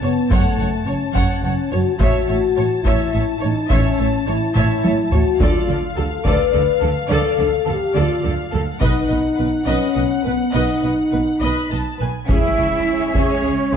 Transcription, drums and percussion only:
0.31 taiko medium
1.16 taiko medium
2.00 taiko medium
2.85 taiko medium
3.70 taiko medium
4.55 taiko mid medium
4.85 taiko high medium
5.12 taiko low medium
5.40 taiko medium
6.25 taiko medium
8.81 taiko medium
12.29 taiko medium
13.15 taiko medium

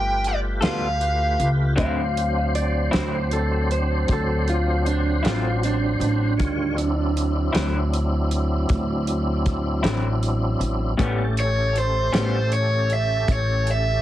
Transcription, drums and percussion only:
0.24 closed hi-hat medium
0.62 snare medium
0.62 closed hi-hat medium
1.01 closed hi-hat medium
1.40 closed hi-hat medium
1.78 kick medium
1.78 closed hi-hat medium
2.17 closed hi-hat medium
2.55 closed hi-hat medium
2.93 snare medium
2.93 closed hi-hat medium
3.31 closed hi-hat medium
3.71 closed hi-hat soft
4.08 kick medium
4.08 closed hi-hat medium
4.48 closed hi-hat medium
4.86 closed hi-hat medium
5.25 snare loud
5.25 closed hi-hat medium
5.63 closed hi-hat medium
6.01 closed hi-hat medium
6.40 kick medium
6.40 closed hi-hat medium
6.78 closed hi-hat medium
7.17 closed hi-hat medium
7.55 snare medium
7.55 closed hi-hat medium
7.93 closed hi-hat medium
8.31 closed hi-hat medium
8.69 kick loud
8.69 closed hi-hat medium
9.07 closed hi-hat medium
9.46 kick medium
9.46 closed hi-hat medium
9.84 snare medium
9.84 closed hi-hat medium
10.23 closed hi-hat medium
10.61 closed hi-hat soft
10.99 kick medium
10.99 closed hi-hat medium
11.37 closed hi-hat medium
11.76 closed hi-hat medium
12.14 snare medium
12.14 closed hi-hat medium
12.52 closed hi-hat medium
12.90 closed hi-hat medium
13.28 kick medium
13.28 closed hi-hat medium
13.67 closed hi-hat medium

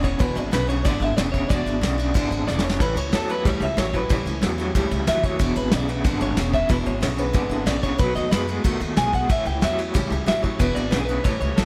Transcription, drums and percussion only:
0.04 kick medium
0.04 ride medium
0.20 kick loud
0.20 ride loud
0.37 ride medium
0.53 snare loud
0.53 ride medium
0.69 ride medium
0.85 kick loud
0.85 snare soft
0.85 ride medium
1.02 ride medium
1.18 snare loud
1.18 ride medium
1.34 kick medium
1.34 ride medium
1.50 kick loud
1.50 ride medium
1.67 ride medium
1.83 snare loud
1.83 ride medium
1.99 ride medium
2.15 kick loud
2.15 ride medium
2.32 ride medium
2.48 snare medium
2.59 snare medium
2.69 snare loud
2.80 kick loud
2.80 ride medium
2.97 ride medium
3.13 snare loud
3.13 ride medium
3.29 ride medium
3.45 kick loud
3.45 snare soft
3.45 ride medium
3.61 ride medium
3.78 snare loud
3.78 ride medium
3.94 kick medium
3.94 ride medium
4.10 kick loud
4.10 ride medium
4.27 ride medium
4.43 snare loud
4.43 ride medium
4.59 ride medium
4.75 kick loud
4.75 ride medium
4.91 ride medium
5.07 snare loud
5.07 ride medium
5.23 kick medium
5.23 ride medium
5.39 kick loud
5.39 ride medium
5.55 ride medium
5.71 snare loud
5.71 ride medium
5.89 ride medium
6.04 kick loud
6.04 snare soft
6.04 ride medium
6.21 ride medium
6.37 snare loud
6.37 ride medium
6.53 kick medium
6.53 ride medium
6.69 kick loud
6.69 ride medium
6.86 ride medium
7.02 snare loud
7.02 ride medium
7.18 ride medium
7.34 kick loud
7.34 snare soft
7.34 ride medium
7.51 ride medium
7.67 snare loud
7.67 ride medium
7.83 kick medium
7.83 ride medium
7.99 kick loud
7.99 ride medium
8.16 ride medium
8.32 snare loud
8.32 ride medium
8.48 ride medium
8.65 kick loud
8.65 ride loud
8.81 ride medium
8.97 snare loud
8.97 ride medium
9.13 kick medium
9.13 ride medium
9.30 kick loud
9.30 ride loud
9.46 ride medium
9.62 snare loud
9.62 ride medium
9.79 ride medium
9.95 kick loud
9.95 ride medium
10.12 ride medium
10.28 snare loud
10.28 ride medium
10.44 kick medium
10.44 ride medium
10.60 kick loud
10.60 ride medium
10.76 ride medium
10.92 snare loud
10.92 ride medium
11.09 ride medium
11.25 kick loud
11.25 snare soft
11.25 ride medium
11.41 ride medium
11.58 snare loud
11.58 ride loud

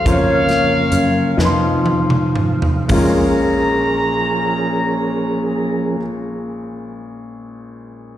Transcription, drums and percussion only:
0.06 kick medium
0.06 closed hi-hat medium
0.49 snare soft
0.49 closed hi-hat soft
0.92 closed hi-hat medium
1.39 snare soft
1.86 high tom medium
2.10 mid tom medium
2.36 mid tom medium
2.62 floor tom medium
2.89 kick medium
2.89 floor tom medium
2.89 open hi-hat medium

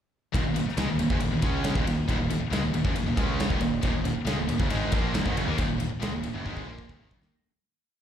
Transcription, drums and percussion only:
0.34 kick loud
0.34 ride loud
0.56 ride medium
0.68 snare soft
0.77 snare loud
0.77 ride loud
0.99 ride medium
1.10 kick loud
1.20 ride loud
1.42 kick loud
1.42 ride medium
1.64 snare loud
1.64 ride loud
1.75 kick loud
1.87 snare soft
1.87 ride medium
2.09 kick loud
2.09 ride medium
2.30 ride medium
2.53 snare loud
2.53 ride loud
2.74 ride medium
2.85 kick loud
2.96 ride loud
3.17 kick loud
3.17 ride medium
3.40 snare loud
3.40 ride medium
3.50 kick loud
3.61 snare soft
3.61 ride medium
3.83 kick loud
3.83 ride medium
4.05 ride medium
4.27 snare loud
4.27 ride loud
4.49 ride medium
4.60 kick loud
4.70 ride loud
4.92 kick loud
4.92 ride medium
5.14 snare loud
5.14 ride loud
5.26 kick loud
5.37 ride medium
5.58 kick loud
5.58 ride loud
5.80 ride medium
6.02 snare loud
6.02 ride loud
6.23 ride medium
6.46 kick medium
6.57 kick medium
6.79 kick medium
6.89 kick medium
7.11 kick medium
7.22 snare medium

